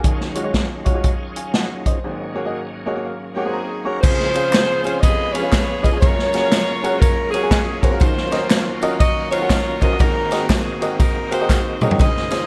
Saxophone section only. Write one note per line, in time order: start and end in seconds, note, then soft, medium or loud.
3.35 3.99 C#4 medium
3.35 3.99 D#4 medium
3.35 3.81 G#4 medium
3.85 4.03 A#4 medium
4.02 4.99 F4 medium
4.02 4.99 G#4 medium
4.02 5.02 C5 loud
5.00 5.34 G#4 medium
5.00 5.98 B4 medium
5.00 5.33 D#5 loud
5.33 5.98 G#4 medium
5.33 5.83 C#5 loud
5.82 6.01 D#5 loud
6.01 6.98 F4 medium
6.01 6.98 A#4 medium
6.01 6.97 C#5 loud
6.99 7.32 C#4 medium
6.99 7.32 F4 medium
6.99 7.32 A#4 loud
7.31 7.97 C#4 medium
7.31 7.97 F4 medium
7.31 7.78 G#4 loud
7.82 8.00 A#4 medium
7.99 8.96 F4 medium
7.99 8.97 F#4 medium
7.99 8.75 C5 loud
9.00 9.31 F#4 medium
9.00 9.96 A#4 loud
9.00 9.30 D#5 loud
9.31 9.96 F4 medium
9.31 9.96 F#4 medium
9.31 9.78 C#5 loud
9.81 10.00 D#5 loud
9.99 10.49 D#4 medium
9.99 10.96 F#4 medium
9.99 10.50 A#4 loud
10.49 11.45 C4 medium
10.49 10.99 D#4 medium
10.49 10.96 G#4 loud
10.99 11.31 D#4 medium
10.99 11.32 F#4 medium
10.99 11.31 A#4 loud
11.33 11.96 D#4 medium
11.33 11.96 F#4 medium
11.33 11.78 C5 loud
11.82 12.00 C#5 medium
12.00 12.47 G#4 medium
12.00 12.47 C5 medium
12.00 12.47 D#5 loud